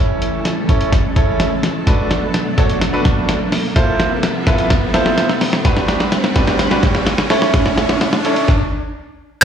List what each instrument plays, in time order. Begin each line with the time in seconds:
Already playing: string machine E3 A3 C#4 A4, grand piano C#4 E4 A4 C#5, riser
0.22 closed hi-hat
0.45 snare, closed hi-hat
0.69 grand piano C#4 E4 A4 C#5, kick, closed hi-hat
0.81 closed hi-hat
0.92 kick, snare, closed hi-hat
1.16 grand piano C#4 E4 A4 C#5, kick, closed hi-hat
1.40 snare, closed hi-hat
1.63 snare, closed hi-hat
1.87 string machine F#3 B3 D4, grand piano D4 F#4 A4 B4, kick, snare, closed hi-hat
2.11 snare, closed hi-hat
2.34 snare, closed hi-hat
2.58 grand piano D4 F#4 A4 C#5, kick, snare, closed hi-hat
2.69 closed hi-hat
2.81 snare, closed hi-hat
2.93 grand piano D4 F#4 A4 B4
3.05 kick, snare, closed hi-hat
3.29 snare, closed hi-hat
3.52 snare, open hi-hat
3.76 string machine F3 C4 A4 E5, grand piano E4 F4 A4 C5, kick, snare, closed hi-hat
4.00 snare, closed hi-hat
4.23 snare, closed hi-hat
4.47 grand piano E4 F4 A4 B4, kick, snare, closed hi-hat
4.58 closed hi-hat
4.70 kick, snare, closed hi-hat
4.94 grand piano E4 F4 A4 C5, snare, closed hi-hat
5.06 snare
5.18 snare, closed hi-hat
5.29 snare
5.41 snare, open hi-hat
5.53 snare
5.65 string machine G3 D4 B4 F#5, grand piano D4 F#4 G4 B4, kick, snare, closed hi-hat
5.77 snare
5.88 snare, closed hi-hat
6.00 snare
6.12 snare, closed hi-hat
6.24 snare
6.35 grand piano D4 F#4 G4 B4, kick, snare, closed hi-hat
6.47 snare, closed hi-hat
6.59 snare, closed hi-hat
6.71 grand piano D4 F#4 G4 B4, snare
6.83 kick, snare, closed hi-hat
6.95 snare
7.07 snare, closed hi-hat
7.18 snare
7.30 string machine A3 C#4 E4 C#5, grand piano C#4 E4 A4 C#5, snare, open hi-hat
7.42 snare
7.54 kick, snare, closed hi-hat
7.66 snare
7.78 snare, closed hi-hat
7.89 snare
8.01 snare, closed hi-hat
8.13 snare
8.25 grand piano C#4 E4 A4 C#5, closed hi-hat
8.36 closed hi-hat
8.48 kick, snare